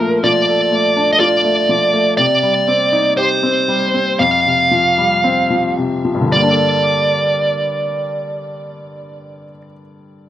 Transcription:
0, 0, Header, 1, 3, 480
1, 0, Start_track
1, 0, Key_signature, -2, "minor"
1, 0, Tempo, 966184
1, 1077, Tempo, 1008403
1, 1078, Time_signature, 4, 2, 24, 8
1, 2037, Tempo, 1065719
1, 2997, Tempo, 1100917
1, 4730, End_track
2, 0, Start_track
2, 0, Title_t, "Lead electric guitar"
2, 0, Program_c, 0, 29
2, 0, Note_on_c, 0, 70, 65
2, 118, Note_on_c, 0, 74, 70
2, 137, Note_off_c, 0, 70, 0
2, 558, Note_off_c, 0, 74, 0
2, 559, Note_on_c, 0, 75, 52
2, 593, Note_off_c, 0, 75, 0
2, 595, Note_on_c, 0, 74, 70
2, 1059, Note_off_c, 0, 74, 0
2, 1079, Note_on_c, 0, 74, 80
2, 1534, Note_off_c, 0, 74, 0
2, 1555, Note_on_c, 0, 72, 67
2, 2040, Note_on_c, 0, 77, 69
2, 2053, Note_off_c, 0, 72, 0
2, 2736, Note_off_c, 0, 77, 0
2, 3000, Note_on_c, 0, 74, 58
2, 4437, Note_off_c, 0, 74, 0
2, 4730, End_track
3, 0, Start_track
3, 0, Title_t, "Grand piano"
3, 0, Program_c, 1, 0
3, 0, Control_c, 1, 64, 127
3, 0, Note_on_c, 1, 46, 55
3, 0, Note_on_c, 1, 53, 45
3, 0, Note_on_c, 1, 57, 44
3, 0, Note_on_c, 1, 62, 44
3, 0, Note_on_c, 1, 65, 44
3, 1, Note_off_c, 1, 57, 0
3, 1, Note_on_c, 1, 57, 39
3, 111, Note_off_c, 1, 53, 0
3, 119, Note_on_c, 1, 53, 48
3, 238, Note_on_c, 1, 69, 42
3, 350, Note_off_c, 1, 57, 0
3, 357, Note_on_c, 1, 57, 39
3, 453, Note_off_c, 1, 62, 0
3, 479, Note_on_c, 1, 62, 39
3, 574, Note_off_c, 1, 65, 0
3, 598, Note_on_c, 1, 65, 45
3, 709, Note_off_c, 1, 57, 0
3, 717, Note_on_c, 1, 57, 45
3, 832, Note_off_c, 1, 53, 0
3, 840, Note_on_c, 1, 53, 42
3, 953, Note_off_c, 1, 57, 0
3, 960, Note_on_c, 1, 57, 41
3, 1060, Note_off_c, 1, 46, 0
3, 1060, Note_off_c, 1, 69, 0
3, 1063, Note_off_c, 1, 62, 0
3, 1066, Note_off_c, 1, 65, 0
3, 1073, Note_off_c, 1, 53, 0
3, 1076, Note_off_c, 1, 57, 0
3, 1082, Note_on_c, 1, 48, 51
3, 1084, Control_c, 1, 64, 0
3, 1172, Control_c, 1, 64, 127
3, 1200, Note_on_c, 1, 55, 38
3, 1319, Note_on_c, 1, 60, 42
3, 1437, Note_on_c, 1, 63, 43
3, 1559, Note_on_c, 1, 67, 46
3, 1670, Note_off_c, 1, 60, 0
3, 1677, Note_on_c, 1, 60, 48
3, 1791, Note_off_c, 1, 55, 0
3, 1798, Note_on_c, 1, 55, 41
3, 1913, Note_off_c, 1, 60, 0
3, 1920, Note_on_c, 1, 60, 39
3, 2021, Note_off_c, 1, 48, 0
3, 2022, Note_off_c, 1, 63, 0
3, 2027, Note_off_c, 1, 67, 0
3, 2033, Note_off_c, 1, 55, 0
3, 2037, Note_off_c, 1, 60, 0
3, 2042, Note_on_c, 1, 41, 51
3, 2043, Control_c, 1, 64, 0
3, 2126, Control_c, 1, 64, 127
3, 2161, Note_on_c, 1, 48, 36
3, 2275, Note_on_c, 1, 53, 38
3, 2395, Note_on_c, 1, 55, 43
3, 2512, Note_on_c, 1, 60, 47
3, 2624, Note_off_c, 1, 53, 0
3, 2631, Note_on_c, 1, 53, 42
3, 2746, Note_off_c, 1, 48, 0
3, 2753, Note_on_c, 1, 48, 38
3, 2869, Note_off_c, 1, 53, 0
3, 2876, Note_on_c, 1, 53, 41
3, 2920, Note_on_c, 1, 43, 46
3, 2951, Note_on_c, 1, 50, 42
3, 2976, Note_off_c, 1, 55, 0
3, 2983, Note_off_c, 1, 41, 0
3, 2983, Note_on_c, 1, 55, 42
3, 2984, Note_off_c, 1, 60, 0
3, 2991, Note_off_c, 1, 48, 0
3, 2995, Note_off_c, 1, 53, 0
3, 3005, Control_c, 1, 64, 0
3, 3014, Note_on_c, 1, 58, 39
3, 3046, Note_on_c, 1, 62, 40
3, 3076, Note_on_c, 1, 69, 45
3, 3079, Control_c, 1, 64, 127
3, 4359, Note_off_c, 1, 43, 0
3, 4389, Note_off_c, 1, 50, 0
3, 4419, Note_off_c, 1, 55, 0
3, 4450, Note_off_c, 1, 58, 0
3, 4482, Note_off_c, 1, 62, 0
3, 4512, Note_off_c, 1, 69, 0
3, 4730, End_track
0, 0, End_of_file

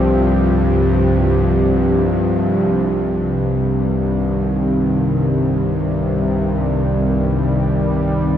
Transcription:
0, 0, Header, 1, 4, 480
1, 0, Start_track
1, 0, Key_signature, -3, "minor"
1, 0, Tempo, 500000
1, 8040, End_track
2, 0, Start_track
2, 0, Title_t, "Analog synth pad"
2, 0, Program_c, 0, 89
2, 0, Note_on_c, 0, 53, 85
2, 0, Note_on_c, 0, 60, 70
2, 0, Note_on_c, 0, 67, 83
2, 3062, Note_off_c, 0, 53, 0
2, 3066, Note_on_c, 0, 48, 76
2, 4539, Note_on_c, 0, 55, 75
2, 4629, Note_off_c, 0, 67, 0
2, 5378, Note_off_c, 0, 60, 0
2, 6736, Note_on_c, 0, 74, 68
2, 8040, Note_off_c, 0, 48, 0
2, 8040, Note_off_c, 0, 55, 0
2, 8040, Note_off_c, 0, 74, 0
2, 8040, End_track
3, 0, Start_track
3, 0, Title_t, "Synth drone"
3, 0, Program_c, 1, 95
3, 3072, Note_on_c, 1, 51, 74
3, 8040, Note_off_c, 1, 51, 0
3, 8040, End_track
4, 0, Start_track
4, 0, Title_t, "Synth drone"
4, 0, Program_c, 2, 95
4, 0, Note_on_c, 2, 36, 71
4, 0, Note_on_c, 2, 43, 70
4, 3058, Note_off_c, 2, 43, 0
4, 3059, Note_off_c, 2, 36, 0
4, 3070, Note_on_c, 2, 36, 70
4, 3070, Note_on_c, 2, 43, 69
4, 8040, Note_off_c, 2, 36, 0
4, 8040, Note_off_c, 2, 43, 0
4, 8040, End_track
0, 0, End_of_file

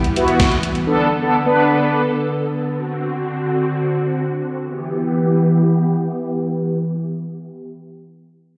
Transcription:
0, 0, Header, 1, 4, 480
1, 0, Start_track
1, 0, Key_signature, 1, "minor"
1, 0, Tempo, 500000
1, 8231, End_track
2, 0, Start_track
2, 0, Title_t, "Analog polysynth"
2, 0, Program_c, 0, 90
2, 153, Note_on_c, 0, 59, 86
2, 154, Note_on_c, 0, 64, 82
2, 154, Note_on_c, 0, 66, 97
2, 554, Note_off_c, 0, 59, 0
2, 554, Note_off_c, 0, 64, 0
2, 554, Note_off_c, 0, 66, 0
2, 834, Note_on_c, 0, 62, 83
2, 835, Note_on_c, 0, 59, 90
2, 835, Note_on_c, 0, 69, 103
2, 1034, Note_off_c, 0, 62, 0
2, 1035, Note_off_c, 0, 59, 0
2, 1035, Note_off_c, 0, 69, 0
2, 1173, Note_on_c, 0, 59, 90
2, 1174, Note_on_c, 0, 62, 81
2, 1174, Note_on_c, 0, 69, 97
2, 1307, Note_off_c, 0, 59, 0
2, 1307, Note_off_c, 0, 69, 0
2, 1308, Note_off_c, 0, 62, 0
2, 1402, Note_on_c, 0, 62, 80
2, 1403, Note_on_c, 0, 59, 90
2, 1403, Note_on_c, 0, 71, 97
2, 1935, Note_off_c, 0, 62, 0
2, 1936, Note_off_c, 0, 59, 0
2, 1936, Note_off_c, 0, 71, 0
2, 8231, End_track
3, 0, Start_track
3, 0, Title_t, "String machine"
3, 0, Program_c, 1, 50
3, 0, Note_on_c, 1, 52, 80
3, 0, Note_on_c, 1, 55, 88
3, 0, Note_on_c, 1, 59, 73
3, 798, Note_off_c, 1, 55, 0
3, 815, Note_off_c, 1, 52, 0
3, 834, Note_on_c, 1, 50, 82
3, 835, Note_on_c, 1, 69, 88
3, 2610, Note_off_c, 1, 59, 0
3, 2630, Note_off_c, 1, 50, 0
3, 2630, Note_off_c, 1, 69, 0
3, 2648, Note_on_c, 1, 50, 78
3, 2648, Note_on_c, 1, 60, 74
3, 2648, Note_on_c, 1, 66, 84
3, 4444, Note_off_c, 1, 50, 0
3, 4444, Note_off_c, 1, 60, 0
3, 4444, Note_off_c, 1, 66, 0
3, 4463, Note_on_c, 1, 52, 81
3, 4464, Note_on_c, 1, 59, 72
3, 4464, Note_on_c, 1, 67, 87
3, 7348, Note_off_c, 1, 52, 0
3, 7349, Note_off_c, 1, 59, 0
3, 7349, Note_off_c, 1, 67, 0
3, 8231, End_track
4, 0, Start_track
4, 0, Title_t, "Drums"
4, 42, Note_on_c, 9, 42, 53
4, 138, Note_off_c, 9, 42, 0
4, 157, Note_on_c, 9, 42, 69
4, 253, Note_off_c, 9, 42, 0
4, 267, Note_on_c, 9, 42, 52
4, 363, Note_off_c, 9, 42, 0
4, 381, Note_on_c, 9, 36, 108
4, 381, Note_on_c, 9, 42, 68
4, 383, Note_on_c, 9, 38, 107
4, 477, Note_off_c, 9, 36, 0
4, 477, Note_off_c, 9, 42, 0
4, 479, Note_off_c, 9, 38, 0
4, 494, Note_on_c, 9, 42, 53
4, 590, Note_off_c, 9, 42, 0
4, 606, Note_on_c, 9, 42, 69
4, 702, Note_off_c, 9, 42, 0
4, 722, Note_on_c, 9, 42, 51
4, 818, Note_off_c, 9, 42, 0
4, 8231, End_track
0, 0, End_of_file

